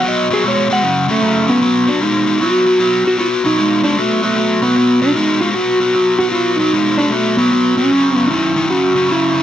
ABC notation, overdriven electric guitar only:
X:1
M:4/4
L:1/8
Q:"Swing" 1/4=152
K:Bmix
V:1 name="Overdriven electric guitar" clef=bass
[B,,F,] [B,,F,] [B,,G,] [B,,G,] [F,,C,] [F,,C,] [F,,C,] [F,,C,] | [B,,F,] [B,,F,] [B,,G,] [B,,G,] [B,,F,] [B,,F,] [B,,F,] [B,,F,] | [B,,F,] [B,,F,] [B,,G,] [B,,G,] [B,,F,] [B,,F,] [B,,F,] [B,,F,] | [B,,F,] [B,,F,] [B,,G,] [B,,G,] [B,,F,] [B,,F,] [B,,F,] [B,,F,] |
[B,,F,] [B,,F,] [B,,G,] [B,,G,] [B,,F,] [B,,F,] [B,,F,] [B,,F,] | [F,,C,] [F,,C,] [F,,D,] [F,,D,] [F,,C,] [F,,C,] [F,,C,] [F,,C,] |]